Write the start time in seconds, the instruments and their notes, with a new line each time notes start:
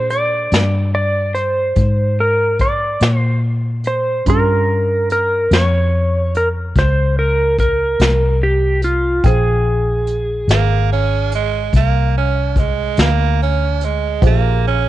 Already playing: fingered electric bass A#2, grand piano D4 G4 G#4 C5, electric slide guitar C5
0.10 electric slide guitar D5, closed hi-hat
0.52 fingered electric bass G2, snare, closed hi-hat
0.95 electric slide guitar D5
1.35 electric slide guitar C5, closed hi-hat
1.76 fingered electric bass G#2, kick, closed hi-hat
2.20 electric slide guitar A#4
2.59 electric slide guitar D5, kick, closed hi-hat
3.00 fingered electric bass A#2, snare, closed hi-hat
3.18 electric slide guitar C5
3.84 electric slide guitar C5, closed hi-hat
4.26 fingered electric bass G2, grand piano C#4 F4 G4 C6, electric slide guitar A#4, kick, closed hi-hat
5.10 electric slide guitar A#4, closed hi-hat
5.51 fingered electric bass F2, electric slide guitar C#5, snare, closed hi-hat
6.35 electric slide guitar A#4, closed hi-hat
6.75 fingered electric bass C#2, electric slide guitar C5, kick, snare, closed hi-hat
7.19 electric slide guitar A#4
7.59 electric slide guitar A#4, kick, closed hi-hat
8.00 fingered electric bass C2, snare, closed hi-hat
8.43 electric slide guitar G4
8.82 electric slide guitar F4, closed hi-hat
9.24 fingered electric bass A#1, grand piano F4 G#4 C5 G5, electric slide guitar G#4, kick, closed hi-hat
10.07 closed hi-hat
10.48 fingered electric bass G#1, tenor saxophone A#3, snare, closed hi-hat
10.92 tenor saxophone C#4
11.32 tenor saxophone G#3, closed hi-hat
11.73 fingered electric bass C2, tenor saxophone A#3, kick, snare, closed hi-hat
12.17 tenor saxophone C#4
12.56 tenor saxophone G#3, kick, closed hi-hat
12.97 fingered electric bass D2, snare, closed hi-hat
13.01 tenor saxophone A#3
13.42 tenor saxophone C#4
13.81 tenor saxophone G#3, closed hi-hat
14.21 fingered electric bass A#1, grand piano F4 G4 G#4 C5, kick, closed hi-hat
14.26 tenor saxophone A#3
14.67 tenor saxophone C#4